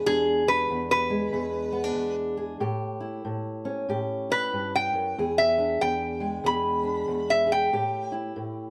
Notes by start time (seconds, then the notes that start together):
Already playing: E3 G#3
0.06 E2 D4 G#4
0.47 D4 B4
0.70 E2
0.91 B4
1.10 G#3
1.33 E2 G#4
1.73 B3
1.84 D4
1.95 E2
2.37 G#4
2.60 A2 G4
3.00 E4
3.25 A2
3.65 C#4
3.89 A2 G4
4.30 E4 B4
4.53 G2
4.75 G5
4.93 F#2
5.18 E2 G#4
5.38 E5
5.58 D4
5.81 E2 G5
6.20 G#3
6.44 E2 G#4 B5
6.83 D4
7.08 E2
7.30 E5
7.47 G#4
7.52 G5
7.73 A2 G4
8.12 E4
8.36 A2